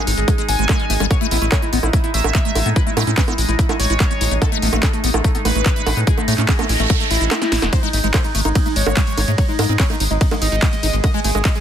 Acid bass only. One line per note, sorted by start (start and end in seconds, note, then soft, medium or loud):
0.07 0.11 D#4 medium
0.18 0.20 G#3 medium
0.28 0.30 G#3 loud
0.38 0.42 G#3 medium
0.49 0.51 A3 medium
0.59 0.65 G#3 medium
0.69 0.81 G#3 medium
0.80 0.86 G3 medium
0.90 0.94 A3 loud
1.00 1.06 G3 loud
1.11 1.15 A3 medium
1.21 1.27 A3 loud
1.31 1.37 B3 medium
1.42 1.46 A3 loud
1.52 1.56 C#4 loud
1.62 1.65 A3 medium
1.73 1.79 B3 loud
1.83 1.87 E4 medium
1.93 1.97 A3 medium
2.04 2.06 B3 medium
2.14 2.20 A3 medium
2.24 2.30 A3 medium
2.35 2.39 A3 loud
2.45 2.51 A3 medium
2.55 2.59 E4 medium
2.66 2.70 B3 medium
2.76 2.80 E4 medium
2.87 2.90 A3 medium
2.97 3.03 A3 loud
3.07 3.11 C#4 medium
3.17 3.21 C#4 loud
3.28 3.34 B3 medium
3.38 3.42 E4 medium
3.49 3.51 A3 medium
3.59 3.61 A3 loud
3.69 3.73 A3 medium
3.80 3.86 E4 medium
3.90 3.94 E4 medium
4.00 4.04 A3 medium
4.11 4.13 A3 medium
4.21 4.25 E4 medium
4.31 4.34 A3 medium
4.42 4.46 A3 medium
4.52 4.58 A3 loud
4.62 4.68 B3 medium
4.73 4.77 A3 loud
4.83 4.87 C#4 loud
4.93 4.96 A3 medium
5.04 5.10 B3 loud
5.14 5.18 E4 medium
5.24 5.28 A3 medium
5.35 5.37 B3 medium
5.45 5.51 A3 medium
5.55 5.61 A3 medium
5.66 5.70 A3 loud
5.76 5.82 A3 medium
5.86 5.90 E4 medium
5.97 6.01 B3 medium
6.07 6.11 E4 medium
6.18 6.21 A3 medium
6.28 6.34 A3 loud
6.38 6.42 C#4 medium
6.49 6.53 C#4 loud
6.59 6.65 B3 medium
6.69 6.73 E4 medium
6.80 6.82 A3 medium
6.90 6.92 A3 loud
7.00 7.04 A3 medium
7.11 7.17 E4 medium
7.21 7.25 E4 medium
7.31 7.35 A3 medium
7.42 7.44 A3 medium
7.52 7.56 E4 medium
7.62 7.65 A3 medium
7.73 7.77 G#3 medium
7.83 7.89 G#3 loud
7.93 7.99 A3 medium
8.04 8.08 G#3 loud
8.14 8.18 C4 loud
8.24 8.27 G#3 medium
8.35 8.41 A3 loud
8.45 8.49 D#4 medium
8.55 8.59 C4 medium
8.66 8.68 A3 medium
8.76 8.82 G#3 medium
8.86 8.92 G#3 medium
8.97 9.01 G#3 loud
9.07 9.13 G#3 medium
9.17 9.21 D#4 medium
9.28 9.32 A3 medium
9.38 9.42 D#4 medium
9.48 9.52 G#3 medium
9.59 9.65 G#3 loud
9.69 9.73 C4 medium
9.80 9.84 C4 loud
9.90 9.96 A3 medium
10.00 10.04 D#4 medium
10.11 10.13 G#3 medium
10.21 10.23 G#3 loud
10.31 10.35 G#3 medium
10.42 10.48 D#4 medium
10.52 10.56 D#4 medium
10.62 10.66 G#3 medium
10.73 10.75 G#3 medium
10.83 10.87 D#4 medium
10.93 10.96 G#3 medium
11.04 11.08 G#3 medium
11.14 11.20 G#3 loud
11.24 11.30 A3 medium
11.35 11.39 G#3 loud
11.45 11.49 C4 loud
11.55 11.58 G#3 medium